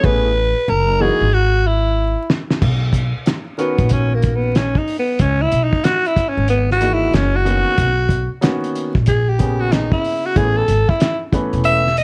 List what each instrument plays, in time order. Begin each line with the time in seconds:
0.03 upright bass A1, upright piano E3 A3 B3 C#4 G#4, alto saxophone B4, kick
0.68 upright bass F#1, alto saxophone A#4
1.00 upright piano E3 G#3 A#3 D#4 F#4, alto saxophone G#4
1.21 upright bass G#1
1.34 alto saxophone F#4
1.67 alto saxophone E4
2.30 snare
2.50 snare
2.62 upright bass B1, kick, crash
2.93 kick, closed hi-hat
3.26 snare, closed hi-hat
3.58 upright piano D#3 B3 C#4 F#4 A#4, alto saxophone B3, closed hi-hat
3.78 upright bass A#1, kick, closed hi-hat
3.89 alto saxophone C#4, kick, closed hi-hat
4.14 alto saxophone A#3
4.22 kick, closed hi-hat
4.36 alto saxophone B3
4.55 alto saxophone C#4, snare, closed hi-hat
4.75 alto saxophone D#4, kick
4.88 open hi-hat
4.99 alto saxophone B3
5.19 upright bass C#2, alto saxophone C#4, kick, closed hi-hat
5.42 alto saxophone E4
5.52 upright bass B1, closed hi-hat
5.64 alto saxophone D#4
5.73 kick
5.84 alto saxophone F#4, snare, closed hi-hat
6.05 alto saxophone E4, closed hi-hat
6.16 kick, closed hi-hat
6.29 alto saxophone C#4
6.37 upright bass G#1
6.48 alto saxophone B3, closed hi-hat
6.71 alto saxophone F#4, snare
6.81 upright piano E3 G#3 A#3 D#4 F#4, closed hi-hat
6.94 alto saxophone E4
7.14 upright bass F#1, alto saxophone C#4, snare, closed hi-hat
7.36 alto saxophone F#4
7.45 upright piano D#3 A#3 B3 C#4 F#4, closed hi-hat
7.78 upright bass B1, kick, closed hi-hat
8.09 kick, closed hi-hat
8.41 upright piano D#3 A#3 B3 C#4 F#4, snare, closed hi-hat
8.64 closed hi-hat
8.75 closed hi-hat
8.95 upright bass A#1, kick
9.06 alto saxophone G#4, kick, closed hi-hat
9.29 alto saxophone G4
9.39 upright piano C#3 A#3 B3 C#4 G#4, kick, closed hi-hat
9.61 alto saxophone F#4
9.72 alto saxophone D#4, snare, closed hi-hat
9.92 alto saxophone E4, kick
10.04 open hi-hat
10.26 alto saxophone F#4
10.35 upright bass A1, upright piano E3 A3 B3 C#4 G#4, alto saxophone G#4, kick, closed hi-hat
10.57 alto saxophone A4
10.68 upright bass G#1, closed hi-hat
10.89 alto saxophone E4, kick
11.00 snare, closed hi-hat
11.32 upright piano E3 A3 B3 C#4 B4, kick, closed hi-hat
11.53 upright bass E1, closed hi-hat
11.64 alto saxophone E5, closed hi-hat
11.87 snare
11.97 alto saxophone D#5, closed hi-hat